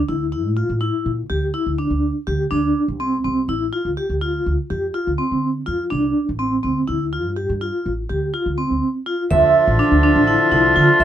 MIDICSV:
0, 0, Header, 1, 6, 480
1, 0, Start_track
1, 0, Key_signature, -1, "minor"
1, 0, Tempo, 485044
1, 2489, Time_signature, 7, 2, 24, 8
1, 10926, End_track
2, 0, Start_track
2, 0, Title_t, "Clarinet"
2, 0, Program_c, 0, 71
2, 9209, Note_on_c, 0, 65, 90
2, 10926, Note_off_c, 0, 65, 0
2, 10926, End_track
3, 0, Start_track
3, 0, Title_t, "Vibraphone"
3, 0, Program_c, 1, 11
3, 83, Note_on_c, 1, 64, 62
3, 230, Note_off_c, 1, 64, 0
3, 319, Note_on_c, 1, 64, 60
3, 468, Note_off_c, 1, 64, 0
3, 560, Note_on_c, 1, 65, 62
3, 709, Note_off_c, 1, 65, 0
3, 798, Note_on_c, 1, 64, 58
3, 1094, Note_off_c, 1, 64, 0
3, 1283, Note_on_c, 1, 67, 62
3, 1431, Note_off_c, 1, 67, 0
3, 1523, Note_on_c, 1, 64, 66
3, 1671, Note_off_c, 1, 64, 0
3, 1765, Note_on_c, 1, 62, 60
3, 2059, Note_off_c, 1, 62, 0
3, 2245, Note_on_c, 1, 67, 61
3, 2393, Note_off_c, 1, 67, 0
3, 2481, Note_on_c, 1, 62, 71
3, 2776, Note_off_c, 1, 62, 0
3, 2969, Note_on_c, 1, 60, 61
3, 3115, Note_off_c, 1, 60, 0
3, 3210, Note_on_c, 1, 60, 62
3, 3356, Note_off_c, 1, 60, 0
3, 3452, Note_on_c, 1, 64, 65
3, 3598, Note_off_c, 1, 64, 0
3, 3687, Note_on_c, 1, 65, 61
3, 3834, Note_off_c, 1, 65, 0
3, 3931, Note_on_c, 1, 67, 60
3, 4077, Note_off_c, 1, 67, 0
3, 4171, Note_on_c, 1, 65, 58
3, 4463, Note_off_c, 1, 65, 0
3, 4653, Note_on_c, 1, 67, 60
3, 4799, Note_off_c, 1, 67, 0
3, 4890, Note_on_c, 1, 65, 69
3, 5036, Note_off_c, 1, 65, 0
3, 5130, Note_on_c, 1, 60, 59
3, 5423, Note_off_c, 1, 60, 0
3, 5605, Note_on_c, 1, 65, 66
3, 5753, Note_off_c, 1, 65, 0
3, 5841, Note_on_c, 1, 62, 71
3, 6137, Note_off_c, 1, 62, 0
3, 6325, Note_on_c, 1, 60, 64
3, 6473, Note_off_c, 1, 60, 0
3, 6563, Note_on_c, 1, 60, 61
3, 6712, Note_off_c, 1, 60, 0
3, 6805, Note_on_c, 1, 64, 62
3, 6953, Note_off_c, 1, 64, 0
3, 7053, Note_on_c, 1, 65, 55
3, 7198, Note_off_c, 1, 65, 0
3, 7288, Note_on_c, 1, 67, 60
3, 7435, Note_off_c, 1, 67, 0
3, 7532, Note_on_c, 1, 65, 55
3, 7824, Note_off_c, 1, 65, 0
3, 8012, Note_on_c, 1, 67, 61
3, 8157, Note_off_c, 1, 67, 0
3, 8251, Note_on_c, 1, 65, 63
3, 8397, Note_off_c, 1, 65, 0
3, 8487, Note_on_c, 1, 60, 59
3, 8780, Note_off_c, 1, 60, 0
3, 8970, Note_on_c, 1, 65, 59
3, 9116, Note_off_c, 1, 65, 0
3, 9209, Note_on_c, 1, 76, 84
3, 9501, Note_off_c, 1, 76, 0
3, 9690, Note_on_c, 1, 62, 73
3, 9836, Note_off_c, 1, 62, 0
3, 9928, Note_on_c, 1, 62, 74
3, 10074, Note_off_c, 1, 62, 0
3, 10167, Note_on_c, 1, 64, 69
3, 10313, Note_off_c, 1, 64, 0
3, 10406, Note_on_c, 1, 64, 68
3, 10552, Note_off_c, 1, 64, 0
3, 10646, Note_on_c, 1, 65, 74
3, 10792, Note_off_c, 1, 65, 0
3, 10888, Note_on_c, 1, 76, 70
3, 10926, Note_off_c, 1, 76, 0
3, 10926, End_track
4, 0, Start_track
4, 0, Title_t, "Harmonium"
4, 0, Program_c, 2, 20
4, 9210, Note_on_c, 2, 76, 78
4, 9215, Note_on_c, 2, 50, 69
4, 9218, Note_on_c, 2, 53, 66
4, 10926, Note_off_c, 2, 50, 0
4, 10926, Note_off_c, 2, 53, 0
4, 10926, Note_off_c, 2, 76, 0
4, 10926, End_track
5, 0, Start_track
5, 0, Title_t, "Upright bass"
5, 0, Program_c, 3, 32
5, 91, Note_on_c, 3, 38, 70
5, 446, Note_off_c, 3, 38, 0
5, 446, Note_on_c, 3, 45, 60
5, 636, Note_off_c, 3, 45, 0
5, 686, Note_on_c, 3, 45, 71
5, 876, Note_off_c, 3, 45, 0
5, 1046, Note_on_c, 3, 46, 73
5, 1236, Note_off_c, 3, 46, 0
5, 1288, Note_on_c, 3, 38, 70
5, 1478, Note_off_c, 3, 38, 0
5, 1645, Note_on_c, 3, 38, 70
5, 1836, Note_off_c, 3, 38, 0
5, 1883, Note_on_c, 3, 38, 67
5, 2075, Note_off_c, 3, 38, 0
5, 2252, Note_on_c, 3, 38, 80
5, 2441, Note_off_c, 3, 38, 0
5, 2491, Note_on_c, 3, 38, 79
5, 2680, Note_off_c, 3, 38, 0
5, 2853, Note_on_c, 3, 36, 71
5, 3136, Note_off_c, 3, 36, 0
5, 3213, Note_on_c, 3, 36, 70
5, 3401, Note_off_c, 3, 36, 0
5, 3447, Note_on_c, 3, 33, 74
5, 3637, Note_off_c, 3, 33, 0
5, 3810, Note_on_c, 3, 38, 64
5, 3905, Note_off_c, 3, 38, 0
5, 4052, Note_on_c, 3, 38, 67
5, 4336, Note_off_c, 3, 38, 0
5, 4417, Note_on_c, 3, 38, 72
5, 4509, Note_off_c, 3, 38, 0
5, 4655, Note_on_c, 3, 41, 70
5, 4843, Note_off_c, 3, 41, 0
5, 5019, Note_on_c, 3, 38, 70
5, 5110, Note_off_c, 3, 38, 0
5, 5260, Note_on_c, 3, 50, 63
5, 5540, Note_off_c, 3, 50, 0
5, 5618, Note_on_c, 3, 41, 68
5, 5805, Note_off_c, 3, 41, 0
5, 5859, Note_on_c, 3, 36, 80
5, 6045, Note_off_c, 3, 36, 0
5, 6223, Note_on_c, 3, 33, 69
5, 6503, Note_off_c, 3, 33, 0
5, 6574, Note_on_c, 3, 38, 70
5, 6762, Note_off_c, 3, 38, 0
5, 6816, Note_on_c, 3, 38, 71
5, 7176, Note_off_c, 3, 38, 0
5, 7176, Note_on_c, 3, 43, 64
5, 7364, Note_off_c, 3, 43, 0
5, 7417, Note_on_c, 3, 43, 72
5, 7604, Note_off_c, 3, 43, 0
5, 7776, Note_on_c, 3, 33, 71
5, 7963, Note_off_c, 3, 33, 0
5, 8017, Note_on_c, 3, 38, 68
5, 8204, Note_off_c, 3, 38, 0
5, 8372, Note_on_c, 3, 38, 67
5, 8560, Note_off_c, 3, 38, 0
5, 8613, Note_on_c, 3, 38, 63
5, 8707, Note_off_c, 3, 38, 0
5, 9215, Note_on_c, 3, 38, 86
5, 9402, Note_off_c, 3, 38, 0
5, 9574, Note_on_c, 3, 33, 81
5, 9667, Note_off_c, 3, 33, 0
5, 9812, Note_on_c, 3, 38, 75
5, 10000, Note_off_c, 3, 38, 0
5, 10050, Note_on_c, 3, 33, 81
5, 10239, Note_off_c, 3, 33, 0
5, 10408, Note_on_c, 3, 36, 83
5, 10597, Note_off_c, 3, 36, 0
5, 10653, Note_on_c, 3, 50, 86
5, 10745, Note_off_c, 3, 50, 0
5, 10883, Note_on_c, 3, 38, 76
5, 10926, Note_off_c, 3, 38, 0
5, 10926, End_track
6, 0, Start_track
6, 0, Title_t, "Frame drum"
6, 9211, Note_on_c, 9, 64, 58
6, 9310, Note_off_c, 9, 64, 0
6, 10411, Note_on_c, 9, 64, 45
6, 10510, Note_off_c, 9, 64, 0
6, 10893, Note_on_c, 9, 64, 19
6, 10926, Note_off_c, 9, 64, 0
6, 10926, End_track
0, 0, End_of_file